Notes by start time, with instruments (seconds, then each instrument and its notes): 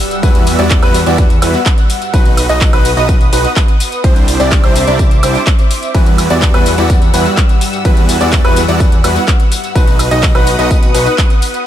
Already playing: analog synth pad G3 F#5 E6, sub drop
0.11 closed hi-hat, tambourine
0.23 analog synth bass E2, supersaw synth G3 B3 E4 F#4 B4, grand piano B4, kick, closed hi-hat, tambourine
0.35 closed hi-hat, tambourine
0.47 open hi-hat, tambourine
0.59 analog synth bass E2, supersaw synth G3 B3 E4 F#4 D5, grand piano D5, closed hi-hat, tambourine
0.71 kick, clap, closed hi-hat, tambourine
0.83 analog synth bass E2, supersaw synth G3 B3 E4 F#4 B4, grand piano B4, closed hi-hat, tambourine, high woodblock
0.94 open hi-hat, tambourine
1.06 analog synth bass E2, supersaw synth G3 B3 E4 F#4 D5, grand piano D5, closed hi-hat, tambourine
1.18 kick, closed hi-hat, tambourine
1.30 closed hi-hat, tambourine
1.42 analog synth bass E2, supersaw synth G3 B3 E4 F#4 B4, grand piano B4, open hi-hat, tambourine, high woodblock
1.54 closed hi-hat, tambourine
1.66 kick, clap, closed hi-hat, tambourine
1.78 closed hi-hat, tambourine
1.90 open hi-hat, tambourine
2.02 closed hi-hat, tambourine
2.14 analog synth bass B1, supersaw synth D#4 F#4 B4, analog synth pad B4 D#6, grand piano B4, kick, closed hi-hat, tambourine
2.25 closed hi-hat, tambourine
2.37 open hi-hat, tambourine, high woodblock
2.49 analog synth bass B1, supersaw synth D#4 F#4 D#5, grand piano D#5, closed hi-hat, tambourine
2.61 kick, clap, closed hi-hat, tambourine
2.73 analog synth bass B1, supersaw synth D#4 F#4 B4, grand piano B4, closed hi-hat, tambourine, high woodblock
2.85 open hi-hat, tambourine
2.97 analog synth bass B1, supersaw synth D#4 F#4 D#5, grand piano D#5, closed hi-hat, tambourine
3.09 kick, closed hi-hat, tambourine
3.21 closed hi-hat, tambourine
3.33 analog synth bass B1, supersaw synth D#4 F#4 B4, grand piano B4, open hi-hat, tambourine
3.45 closed hi-hat, tambourine
3.56 kick, clap, closed hi-hat, tambourine
3.68 closed hi-hat, tambourine
3.80 open hi-hat, tambourine
3.92 closed hi-hat, tambourine
4.04 analog synth bass C2, supersaw synth G3 C4 D4 E4 C5, grand piano C5, analog synth pad C5 E5 D6, kick, closed hi-hat, tambourine
4.16 closed hi-hat, tambourine
4.28 open hi-hat, tambourine
4.40 analog synth bass C2, supersaw synth G3 C4 D4 E4 D5, grand piano D5, closed hi-hat, tambourine
4.52 kick, clap, closed hi-hat, tambourine
4.64 analog synth bass C2, supersaw synth G3 C4 D4 E4 C5, grand piano C5, closed hi-hat, tambourine, high woodblock
4.76 open hi-hat, tambourine
4.87 analog synth bass C2, supersaw synth G3 C4 D4 E4 D5, grand piano D5, closed hi-hat, tambourine
4.99 kick, closed hi-hat, tambourine
5.11 closed hi-hat, tambourine
5.23 analog synth bass C2, supersaw synth G3 C4 D4 E4 C5, grand piano C5, open hi-hat, tambourine, high woodblock
5.35 closed hi-hat, tambourine
5.47 kick, clap, closed hi-hat, tambourine
5.59 closed hi-hat, tambourine
5.71 open hi-hat, tambourine
5.83 closed hi-hat, tambourine
5.94 analog synth bass E2, analog synth pad G3 F#5 E6, supersaw synth G3 B3 E4 F#4 B4, grand piano B4, kick, closed hi-hat, tambourine
6.06 closed hi-hat, tambourine
6.18 open hi-hat, tambourine, high woodblock
6.30 analog synth bass E2, supersaw synth G3 B3 E4 F#4 D5, grand piano D5, closed hi-hat, tambourine
6.42 kick, clap, closed hi-hat, tambourine
6.54 analog synth bass E2, supersaw synth G3 B3 E4 F#4 B4, grand piano B4, closed hi-hat, tambourine, high woodblock
6.66 open hi-hat, tambourine
6.78 analog synth bass E2, supersaw synth G3 B3 E4 F#4 D5, grand piano D5, closed hi-hat, tambourine
6.90 kick, closed hi-hat, tambourine
7.02 closed hi-hat, tambourine
7.14 analog synth bass E2, supersaw synth G3 B3 E4 F#4 B4, grand piano B4, open hi-hat, tambourine
7.26 closed hi-hat, tambourine
7.37 kick, clap, closed hi-hat, tambourine
7.49 closed hi-hat, tambourine
7.61 open hi-hat, tambourine
7.73 closed hi-hat, tambourine
7.85 analog synth bass E2, supersaw synth G3 B3 E4 F#4 B4, grand piano B4, analog synth pad F#5, kick, closed hi-hat, tambourine
7.97 closed hi-hat, tambourine
8.09 open hi-hat, tambourine
8.21 analog synth bass E2, supersaw synth G3 B3 E4 F#4 D5, grand piano D5, closed hi-hat, tambourine
8.33 kick, clap, closed hi-hat, tambourine
8.44 analog synth bass E2, supersaw synth G3 B3 E4 F#4 B4, grand piano B4, closed hi-hat, tambourine, high woodblock
8.56 open hi-hat, tambourine
8.68 analog synth bass E2, supersaw synth G3 B3 E4 F#4 D5, grand piano D5, closed hi-hat, tambourine
8.80 kick, closed hi-hat, tambourine
8.92 closed hi-hat, tambourine
9.04 analog synth bass E2, supersaw synth G3 B3 E4 F#4 B4, grand piano B4, open hi-hat, tambourine, high woodblock
9.16 closed hi-hat, tambourine
9.28 kick, clap, closed hi-hat, tambourine
9.40 closed hi-hat, tambourine
9.52 open hi-hat, tambourine
9.64 closed hi-hat, tambourine
9.75 analog synth bass B1, supersaw synth D#4 F#4 B4, analog synth pad B4 F#5 D#6, grand piano B4, kick, closed hi-hat, tambourine
9.87 closed hi-hat, tambourine
9.99 open hi-hat, tambourine, high woodblock
10.11 analog synth bass B1, supersaw synth D#4 F#4 D#5, grand piano D#5, closed hi-hat, tambourine
10.23 kick, clap, closed hi-hat, tambourine
10.35 analog synth bass B1, supersaw synth D#4 F#4 B4, grand piano B4, closed hi-hat, tambourine, high woodblock
10.47 open hi-hat, tambourine
10.59 analog synth bass B1, supersaw synth D#4 F#4 D#5, grand piano D#5, closed hi-hat, tambourine
10.71 kick, closed hi-hat, tambourine
10.83 closed hi-hat, tambourine
10.95 analog synth bass B1, supersaw synth D#4 F#4 B4, grand piano B4, open hi-hat, tambourine
11.06 closed hi-hat, tambourine
11.18 kick, clap, closed hi-hat, tambourine
11.30 closed hi-hat, tambourine
11.42 open hi-hat, tambourine
11.54 closed hi-hat, tambourine